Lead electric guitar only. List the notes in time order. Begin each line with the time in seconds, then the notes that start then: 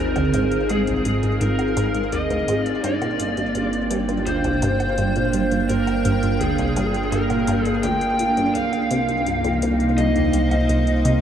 0.00 A#4
0.70 G#4
1.41 A#4
2.13 D#5
2.64 D5
2.84 D5
4.27 C5
5.69 A#4
6.40 G#4
7.12 A#4
7.67 G#4
7.83 G5
8.54 F5
9.98 D#5